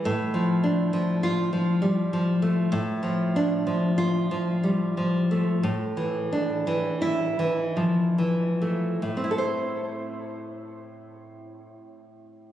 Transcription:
0.05 A2
0.34 F3
0.64 D4
0.93 F3
1.23 F4
1.53 F3
1.82 G3
2.13 F3
2.42 A3
2.72 A2
3.03 F3
3.36 D4
3.67 F3
3.98 F4
4.31 F3
4.63 G3
4.97 F3
5.31 A3
5.63 A2
5.97 E3
6.32 D4
6.67 E3
7.02 E4
7.39 E3
7.77 F3
8.18 E3
8.62 A3
9.02 A2
9.17 C4
9.24 E4
9.31 A4
9.38 C5

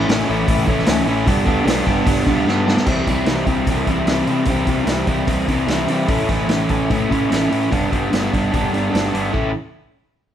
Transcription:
0.08 A1 A2 E3 A3 C#4 E4, snare, open hi-hat
0.28 A1 A2 E3 A3 C#4 E4
0.47 A1 A2 E3 A3 C#4 E4, kick, open hi-hat
0.67 A1 A2 E3 A3 C#4 E4, kick
0.79 snare
0.86 C#2 A2 E3 A3 C#4 E4, snare, open hi-hat
1.05 A1 A2 E3 A3 C#4 E4
1.26 G1 G2 D3 G3 B3 D4, kick, open hi-hat
1.44 D2 G2 D3 G3 B3 D4, kick
1.64 B1 G2 D3 G3 B3 D4, snare, open hi-hat
1.86 G1 G2 D3 G3 B3 D4, kick
2.06 G1 G2 D3 G3 B3 D4, kick, open hi-hat
2.27 D2 G2 D3 G3 B3 D4, kick
2.45 G2 D3 G3 B3, snare
2.49 D4
2.67 G2 D3 G3 B3 D4, snare
2.77 snare
2.86 C2 C3 E3 G3 C4 E4, kick, crash
3.07 C2 C3 E3 G3 C4 E4, kick, open hi-hat
3.26 C2 C3 E3 G3 C4 E4, snare, open hi-hat
3.46 C2 C3 E3 G3 C4 E4, kick, open hi-hat
3.67 C2 C3 E3 G3 C4 E4, kick, open hi-hat
3.87 C2 C3 E3 G3 C4 E4, kick, open hi-hat
4.06 C2 C3 E3 G3 C4 E4, snare, open hi-hat
4.27 C3 E3 G3 C4 E4, open hi-hat
4.45 C2 C3 E3 G3 E4, kick, open hi-hat
4.49 C4
4.67 C2 C3 E3 G3 C4 E4, kick, open hi-hat
4.85 C2 C3 E3 G3 C4 E4, snare, open hi-hat
5.07 C2 C3 E3 G3 C4 E4, kick, open hi-hat
5.26 C2 C3 E3 G3 C4 E4, kick, open hi-hat
5.48 C2 C3 E3 G3 C4 E4, kick, open hi-hat
5.66 C2 C3 E3 G3 C4 E4, snare, open hi-hat
5.86 C3 E3 G3 C4, open hi-hat
5.91 E4
6.08 A1 A2 E3 A3 C#4 E4, kick, open hi-hat
6.28 A1 A2 E3 A3 C#4 E4, kick, open hi-hat
6.47 A1 A2 E3 A3 C#4 E4, snare, open hi-hat
6.69 A1 A2 E3 A3 C#4 E4, kick, open hi-hat
6.90 A1 A2 E3 A3 C#4 E4, kick, open hi-hat
7.09 A1 A2 E3 A3 C#4 E4, kick, open hi-hat
7.29 A1 A2 E3 A3 C#4 E4, snare, open hi-hat
7.49 A2 E3 A3 C#4 E4, open hi-hat
7.70 G1 G2 D3 G3 B3 D4, kick, open hi-hat
7.91 G1 G2 D3 G3 B3 D4, kick, open hi-hat
8.11 G1 G2 D3 G3 B3 D4, snare, open hi-hat
8.32 G1 G2 D3 G3 B3 D4, kick, open hi-hat
8.52 G1 G2 D3 G3 B3 D4, kick, open hi-hat
8.72 G1 G2 D3 G3 B3 D4, open hi-hat
8.90 G1 G2 D3 G3 B3 D4
8.95 snare, open hi-hat
9.12 G1 G2 D3 G3 B3 D4, open hi-hat
9.32 A1 A2 E3 A3 C#4 E4, kick

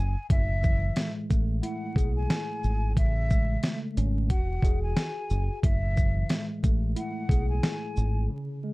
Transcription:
Already playing: F#1 G#5
0.30 F#1 A2 E5, kick, closed hi-hat
0.63 E3, kick, shaker
0.96 G#3, snare, closed hi-hat
1.30 A1 A3, kick, closed hi-hat, shaker
1.62 E4 F#5, closed hi-hat
1.96 B1 G#4, kick, closed hi-hat, shaker
2.16 G#5
2.30 snare, closed hi-hat
2.63 G#1, shaker
2.96 A1 C#3 E5, kick, closed hi-hat
3.30 G#3, kick, shaker
3.63 A3, snare, closed hi-hat
3.97 G#1 C#4, closed hi-hat, shaker
4.30 E1 F#4 F#5, kick, closed hi-hat
4.62 E1 G#4, kick, closed hi-hat, shaker
4.83 G#5
4.97 snare, closed hi-hat
5.30 F#1, shaker
5.63 F#1 A2 E5, kick, closed hi-hat
5.96 E3, kick, shaker
6.29 G#3, snare, closed hi-hat
6.63 A1 A3, kick, closed hi-hat, shaker
6.96 E4 F#5, closed hi-hat
7.29 B1 G#4, kick, closed hi-hat, shaker
7.49 G#5
7.63 snare, closed hi-hat
7.97 G#1, shaker
8.30 C#3
8.64 G#3

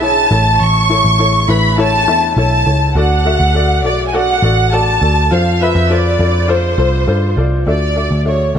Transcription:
Already playing: B1 E3 G#4 B4 D5
0.00 E4 G#4 C#5 A5
0.31 A1 A2 E4 A4 C#5
0.61 A1 C#6
0.89 E4 A4 C#5
1.05 A1
1.19 E4 A4 C#5
1.48 A1 E4 A4 B4 B5
1.78 E4 A4 C#5 A5
2.07 E2 E4 A4 E5
2.37 B1 E4 A4 C#5 A5
2.66 C#2 E4 A4 C#5
2.95 D2 D3 F#4 A4 D5 F#5
3.25 F#4 A4 E5
3.40 D2
3.55 F#4 A4 D5
3.84 B1 F#4 A4 D5
4.07 G#5
4.13 F#4 A4 D5 F#5
4.42 A1 F#4 A4 D5
4.72 F#4 A4 D5 A5
5.02 D2 F#4 A4 D5
5.31 F2 F4 A4 C5 F5
5.61 F4 A4 B4 E5
5.75 F2
5.90 F4 A4 C5 D5
6.19 F2 F4 A4 D5
6.48 F4 A4 C5
6.78 C2 F4 A4 C5
7.07 G2 F4 A4 C5
7.37 C2 F4 A4 D5
7.66 D2 D3 D4 F#4 A4 D5 E5
7.96 D4 F#4 A4 E5
8.11 D2
8.25 D4 F#4 A4 C#5 E5
8.55 D2 D4 F#4

